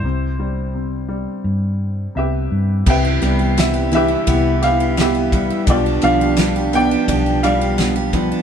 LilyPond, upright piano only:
<<
  \new Staff \with { instrumentName = "Upright piano" } { \time 4/4 \key c \major \tempo 4 = 86 << { c''2. e''4 | g''4 e''8 e''4 f''8 e''4 | d''8 f''4 g''4 f''4 r8 | } \\ { e'2. <g' b'>4 | <b' e''>4. <g' b'>4. <g' b'>4 | <f' g'>8 d''4 d''4 d''4. | } >> }
  \new Staff \with { instrumentName = "Upright piano" } { \clef bass \time 4/4 \key c \major c8 g8 c8 g4. c4 | c8 g8 b8 e8 b8 g'8 b8 g8 | b,8 f8 g8 b8 d'8 g8 b8 f8 | }
>>